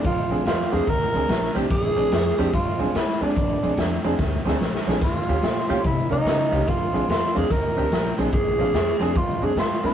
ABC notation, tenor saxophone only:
X:1
M:4/4
L:1/8
Q:"Swing" 1/4=145
K:Bbmix
V:1 name="Tenor saxophone"
F2 F A B3 z | A4 F2 =E D- | D3 z4 z | F4 =E _E3 |
F2 F A B3 z | A4 F A F F |]